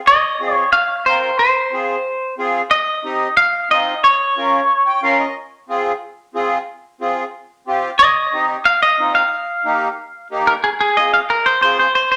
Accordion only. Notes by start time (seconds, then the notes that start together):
0.40 C4 F4 G#4
1.07 C4 F4 A#4
1.72 C4 F4 G#4
2.38 C4 F4 G#4
3.04 C4 D#4 G4
3.70 C4 D#4 F4
4.37 C#4 F4 A#4
4.86 G5
5.02 C#4 F4 A#4 F5
5.19 D#5
5.69 C4 F4 G#4
6.34 C4 F4 G#4
7.01 C4 F4 G#4
7.67 C4 F4 G4
8.33 C4 D#4 G4
8.99 C4 D#4 F4
9.65 A#3 D#4 G4
10.31 A#3 D#4 G4
10.97 C4 F4 G#4
11.63 C4 F4 G#4